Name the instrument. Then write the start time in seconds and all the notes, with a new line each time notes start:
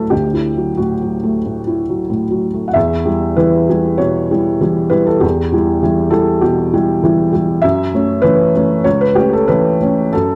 felt piano
Already playing: A2 F#3 A3 E4 A4 B4
0.10 D2 G4
0.33 E4
0.56 F#3
0.77 A2 F#4
1.02 F#3
1.24 A3
1.45 A2
1.67 E4
1.89 F#3
2.10 A2
2.31 F#3
2.54 A3
2.68 F#5
2.74 E2 E5
3.06 G3 E4
3.36 E3 G3 E4 B4
3.69 G3 E4
3.98 B2 C#5
4.31 G3 E4
4.61 E3 G3 E4
4.90 G3 E4 B4
5.06 A4
5.20 E2 G4
5.52 G3 E4
5.83 E3 G3 E4
6.10 G3 E4 A4
6.41 B2 G4
6.74 G3 E4
7.03 E3 G3 E4
7.32 G3 E4
7.62 F#2 E5
7.94 A3 C#4
8.22 E3 A3 C#4 B4
8.56 A3 C#4
8.84 C#2 C#5
9.01 B4
9.15 A3 C#4 G4
9.33 A4
9.48 E3 A3 C#4 B4
9.81 A3 C#4
10.13 F#2 A4